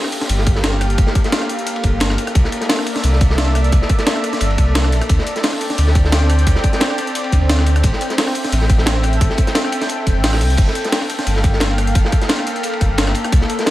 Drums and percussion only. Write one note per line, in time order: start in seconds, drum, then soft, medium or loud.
0.04 cross-stick soft
0.12 closed hi-hat medium
0.12 ride medium
0.21 snare soft
0.21 closed hi-hat soft
0.29 closed hi-hat loud
0.29 ride medium
0.38 snare soft
0.46 kick loud
0.46 closed hi-hat medium
0.46 ride medium
0.56 snare soft
0.64 snare loud
0.64 closed hi-hat loud
0.64 ride medium
0.73 ride soft
0.81 cross-stick soft
0.81 closed hi-hat medium
0.81 ride medium
0.90 closed hi-hat soft
0.98 kick loud
0.98 closed hi-hat medium
0.98 ride medium
1.07 snare medium
1.15 kick loud
1.15 closed hi-hat medium
1.15 ride medium
1.24 snare soft
1.24 closed hi-hat soft
1.32 snare loud
1.32 closed hi-hat medium
1.32 ride medium
1.42 cross-stick soft
1.42 ride soft
1.49 closed hi-hat medium
1.49 ride medium
1.59 closed hi-hat soft
1.66 closed hi-hat loud
1.66 ride medium
1.76 ride soft
1.83 kick medium
1.83 closed hi-hat medium
1.83 ride medium
2.00 snare loud
2.00 closed hi-hat loud
2.00 ride medium
2.10 cross-stick medium
2.10 snare soft
2.18 closed hi-hat medium
2.18 ride medium
2.27 cross-stick soft
2.27 closed hi-hat soft
2.35 kick loud
2.35 closed hi-hat medium
2.35 ride medium
2.44 snare soft
2.52 closed hi-hat medium
2.52 ride medium
2.61 snare soft
2.61 closed hi-hat soft
2.69 snare loud
2.69 closed hi-hat medium
2.69 open hi-hat medium
2.79 cross-stick soft
2.86 closed hi-hat medium
2.86 ride medium
2.96 snare soft
2.96 closed hi-hat soft
3.03 closed hi-hat medium
3.03 ride medium
3.13 snare soft
3.21 kick loud
3.21 closed hi-hat medium
3.21 ride medium
3.30 snare soft
3.38 snare loud
3.38 closed hi-hat medium
3.38 ride medium
3.48 ride soft
3.55 cross-stick soft
3.55 closed hi-hat medium
3.55 ride medium
3.64 closed hi-hat soft
3.72 kick loud
3.72 closed hi-hat medium
3.72 ride medium
3.82 snare medium
3.89 kick loud
3.89 closed hi-hat medium
3.89 ride medium
3.98 snare medium
3.98 closed hi-hat soft
4.07 snare loud
4.07 closed hi-hat medium
4.07 ride medium
4.16 cross-stick soft
4.16 ride soft
4.24 closed hi-hat medium
4.24 ride medium
4.33 snare soft
4.33 closed hi-hat soft
4.41 closed hi-hat medium
4.41 ride medium
4.50 ride soft
4.58 kick medium
4.58 closed hi-hat medium
4.58 ride medium
4.75 snare loud
4.75 closed hi-hat medium
4.75 ride medium
4.84 cross-stick medium
4.92 closed hi-hat medium
4.92 ride medium
5.02 cross-stick soft
5.02 closed hi-hat soft
5.09 kick loud
5.09 closed hi-hat medium
5.09 ride medium
5.19 snare soft
5.27 closed hi-hat medium
5.27 ride medium
5.36 snare soft
5.36 closed hi-hat soft
5.43 snare loud
5.43 closed hi-hat medium
5.43 open hi-hat medium
5.53 cross-stick soft
5.61 closed hi-hat medium
5.61 ride medium
5.70 snare soft
5.70 closed hi-hat soft
5.78 closed hi-hat medium
5.78 ride medium
5.87 snare soft
5.95 kick loud
5.95 closed hi-hat medium
5.95 ride medium
6.05 snare medium
6.12 snare loud
6.12 closed hi-hat medium
6.12 ride medium
6.22 ride soft
6.30 cross-stick soft
6.30 closed hi-hat medium
6.30 ride medium
6.39 closed hi-hat soft
6.47 kick loud
6.47 closed hi-hat medium
6.47 ride medium
6.55 snare medium
6.63 kick loud
6.63 closed hi-hat medium
6.63 ride medium
6.73 snare medium
6.73 closed hi-hat soft
6.81 snare loud
6.81 closed hi-hat medium
6.81 ride medium
6.90 cross-stick soft
6.90 ride soft
6.98 closed hi-hat medium
6.98 ride medium
7.07 closed hi-hat soft
7.15 closed hi-hat loud
7.15 ride medium
7.24 ride soft
7.32 kick medium
7.32 closed hi-hat medium
7.32 ride medium
7.49 snare loud
7.49 closed hi-hat loud
7.49 ride medium
7.59 cross-stick soft
7.59 snare soft
7.66 closed hi-hat medium
7.66 ride medium
7.76 cross-stick soft
7.76 closed hi-hat soft
7.83 kick loud
7.83 closed hi-hat loud
7.83 ride medium
7.93 snare soft
8.01 closed hi-hat medium
8.01 ride medium
8.10 snare soft
8.10 closed hi-hat soft
8.18 snare loud
8.18 closed hi-hat medium
8.18 open hi-hat medium
8.27 cross-stick soft
8.35 closed hi-hat medium
8.35 ride medium
8.45 snare soft
8.45 closed hi-hat soft
8.52 closed hi-hat loud
8.52 ride medium
8.61 snare soft
8.70 kick loud
8.70 closed hi-hat medium
8.70 ride medium
8.78 snare soft
8.86 snare loud
8.86 closed hi-hat loud
8.86 ride medium
8.95 ride soft
9.03 cross-stick soft
9.03 closed hi-hat medium
9.03 ride medium
9.13 closed hi-hat soft
9.21 kick loud
9.21 closed hi-hat loud
9.21 ride medium
9.30 snare medium
9.38 kick loud
9.38 closed hi-hat medium
9.38 ride medium
9.47 snare medium
9.47 closed hi-hat soft
9.55 snare loud
9.55 closed hi-hat medium
9.55 ride loud
9.64 cross-stick soft
9.64 ride soft
9.72 closed hi-hat medium
9.72 ride medium
9.81 snare soft
9.81 closed hi-hat soft
9.89 closed hi-hat loud
9.89 ride medium
10.07 kick medium
10.07 closed hi-hat medium
10.07 ride medium
10.24 snare loud
10.24 closed hi-hat loud
10.24 open hi-hat medium
10.33 cross-stick medium
10.33 snare loud
10.33 open hi-hat medium
10.41 closed hi-hat medium
10.41 ride medium
10.50 closed hi-hat soft
10.57 kick loud
10.57 closed hi-hat medium
10.57 ride medium
10.57 crash medium
10.68 snare soft
10.75 closed hi-hat medium
10.75 ride medium
10.85 snare medium
10.85 closed hi-hat soft
10.92 snare loud
10.92 closed hi-hat medium
10.92 open hi-hat medium
11.02 cross-stick soft
11.10 closed hi-hat medium
11.10 ride medium
11.19 snare soft
11.19 closed hi-hat soft
11.27 closed hi-hat loud
11.27 ride medium
11.36 snare soft
11.44 kick loud
11.44 closed hi-hat medium
11.44 ride medium
11.53 snare soft
11.60 snare loud
11.60 closed hi-hat loud
11.60 ride medium
11.71 ride soft
11.78 cross-stick soft
11.78 closed hi-hat medium
11.78 ride medium
11.87 closed hi-hat soft
11.95 kick loud
11.95 closed hi-hat medium
11.95 ride medium
12.05 snare medium
12.12 kick loud
12.12 closed hi-hat medium
12.12 ride medium
12.22 snare medium
12.22 closed hi-hat soft
12.29 snare loud
12.29 closed hi-hat medium
12.29 ride medium
12.39 cross-stick soft
12.39 ride soft
12.47 closed hi-hat medium
12.47 ride medium
12.56 closed hi-hat soft
12.63 closed hi-hat loud
12.63 ride medium
12.73 ride soft
12.81 kick medium
12.81 closed hi-hat medium
12.81 ride medium
12.98 snare loud
12.98 closed hi-hat loud
12.98 ride medium
13.07 cross-stick medium
13.07 snare soft
13.15 closed hi-hat medium
13.15 ride medium
13.24 cross-stick soft
13.24 closed hi-hat soft
13.32 kick loud
13.32 closed hi-hat medium
13.32 ride medium
13.41 snare soft
13.50 closed hi-hat medium
13.50 ride medium
13.59 snare soft
13.59 closed hi-hat soft
13.66 snare loud
13.66 closed hi-hat medium
13.66 open hi-hat medium